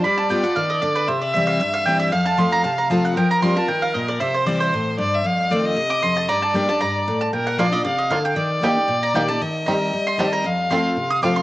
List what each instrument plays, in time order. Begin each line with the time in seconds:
0.04 steel-string acoustic guitar G3, fiddle D5, mandolin B5
0.18 mandolin A5
0.29 steel-string acoustic guitar G3 B3 F4, mandolin G5
0.43 steel-string acoustic guitar B3 F4, mandolin F#5
0.56 steel-string acoustic guitar D#3, mandolin F5
0.70 mandolin D#5
0.82 steel-string acoustic guitar D3, mandolin D5
0.95 mandolin B4
1.08 steel-string acoustic guitar C3, mandolin C5, fiddle E5
1.21 mandolin D5
1.34 steel-string acoustic guitar E3 G3 C4 E4, mandolin E5
1.47 mandolin F5
1.60 steel-string acoustic guitar G2, mandolin E5
1.74 mandolin F5
1.86 steel-string acoustic guitar E3 G3 C4 E4, mandolin G5
2.00 mandolin E5
2.12 steel-string acoustic guitar F2, fiddle F5, mandolin F5
2.26 mandolin A5
2.38 steel-string acoustic guitar F3 A3 C4 F4, mandolin C6
2.52 mandolin A#5
2.64 steel-string acoustic guitar C3, mandolin A5
2.78 mandolin A#5
2.90 steel-string acoustic guitar F3 A3 C4 F4, mandolin A5
3.05 mandolin F#5
3.15 steel-string acoustic guitar F3, fiddle A#4, mandolin G5
3.31 mandolin A#5
3.42 steel-string acoustic guitar F3 G3 C4 F4, mandolin C6
3.56 steel-string acoustic guitar C4 F4, mandolin A5
3.68 steel-string acoustic guitar D#3, mandolin G5
3.82 mandolin F5
3.94 steel-string acoustic guitar A#2, mandolin D#5
4.08 mandolin D5
4.20 steel-string acoustic guitar C3, fiddle C5, mandolin E5
4.34 mandolin C5
4.46 steel-string acoustic guitar E3 G3 C4 E4, mandolin D5
4.60 mandolin C5
4.74 steel-string acoustic guitar A2
4.98 steel-string acoustic guitar G2, fiddle D5
5.14 fiddle E5
5.24 steel-string acoustic guitar F2, fiddle F5
5.50 steel-string acoustic guitar D#3 A3 C4 F4, fiddle D5
5.66 fiddle D#5
5.77 steel-string acoustic guitar C3
5.90 mandolin D6
6.03 steel-string acoustic guitar F2, mandolin C6
6.17 mandolin A5
6.29 steel-string acoustic guitar G2, fiddle D5, mandolin A#5
6.42 mandolin A5
6.54 steel-string acoustic guitar G3 A#3 D4 G4, mandolin G5
6.68 steel-string acoustic guitar D4 G4, mandolin A5
6.81 steel-string acoustic guitar G2, mandolin A#5
7.08 steel-string acoustic guitar A2
7.21 mandolin A5
7.33 steel-string acoustic guitar A#2, fiddle A#4, mandolin G5
7.47 mandolin F#5
7.58 steel-string acoustic guitar F3 A#3 D4 F4, five-string banjo A#3 D4 F4, fiddle D5, mandolin F5
7.72 steel-string acoustic guitar D4 F4, mandolin D#5
7.85 steel-string acoustic guitar C3, mandolin D5, fiddle F5
7.98 mandolin D#5
8.10 steel-string acoustic guitar D3, five-string banjo A#3 D4 F4, mandolin F5
8.25 mandolin G5
8.36 steel-string acoustic guitar D#3, fiddle D5
8.61 steel-string acoustic guitar D#3 A#3 D#4 G4, five-string banjo A#3 D#4 G4, mandolin G5
8.75 steel-string acoustic guitar D#4 G4
8.88 steel-string acoustic guitar A#2
9.03 mandolin A#5
9.14 steel-string acoustic guitar D#3 A#3 D#4 G4, five-string banjo A#3 D#4 G4, mandolin G5
9.28 steel-string acoustic guitar D#4 G4, mandolin A5
9.41 steel-string acoustic guitar D#3, fiddle D#5
9.66 steel-string acoustic guitar D#3 G3 C4 G4, five-string banjo C4 D#4 G4, mandolin A#5
9.93 steel-string acoustic guitar G3
10.07 mandolin C6
10.18 steel-string acoustic guitar D#3 G3 C4 G4, five-string banjo C4 D#4 G4, mandolin A5
10.33 mandolin A#5
10.44 steel-string acoustic guitar F2, fiddle F5
10.70 steel-string acoustic guitar F3 A3 C4 F4, five-string banjo C4 F4, mandolin C6
10.96 steel-string acoustic guitar C3
11.10 mandolin D#6
11.22 steel-string acoustic guitar F3 A3 C4 F4, five-string banjo C4 F4, fiddle F5, mandolin D6
11.36 mandolin C6